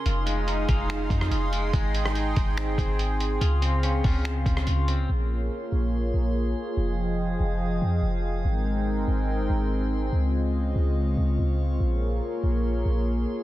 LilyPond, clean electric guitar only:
\new Staff \with { instrumentName = "Clean electric guitar" } { \time 4/4 \key bes \dorian \tempo 4 = 143 f'8 aes8 ees'8 f'4. f'8 aes8 | aes2 c'2 | f'8 c'8 des'8 f'4. f'8 c'8 | r1 |
r1 | r1 | r1 | r1 | }